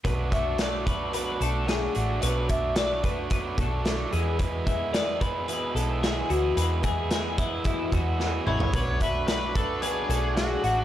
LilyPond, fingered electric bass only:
\new Staff \with { instrumentName = "Fingered electric bass" } { \clef bass \time 4/4 \key b \dorian \tempo 4 = 110 b,,2~ b,,8 b,,4 a,,8 | b,,2~ b,,8 b,,4 e,8~ | e,2~ e,8 b,,4 d,8 | e,2~ e,8 e,4 a,,8 |
b,,2~ b,,8 b,,4 a,,8 | }